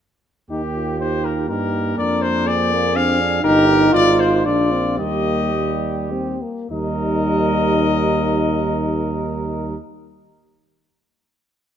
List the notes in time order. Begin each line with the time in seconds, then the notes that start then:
0.50 D#2 A#3 D#4 G4
0.75 F4
0.99 D#4 C5
1.25 A#4
1.49 G2 A#3 D#4 G4 A#4
1.98 F2 D4 A#4 D5
2.21 C5
2.46 C4 G#4 D5
2.72 A#3
2.96 C4 D4 F5
3.20 D4
3.43 G1 D#4 G4 A#4
3.68 D#4
3.92 G#1 F4 D5
4.20 C5
4.44 A#1 D4 F4 D5
4.72 C4
4.98 D#2 G3 A#3 G4 D#5
5.55 G3
6.11 C4
6.42 A#3
6.71 D#2 G3 D#4 A#4 D#5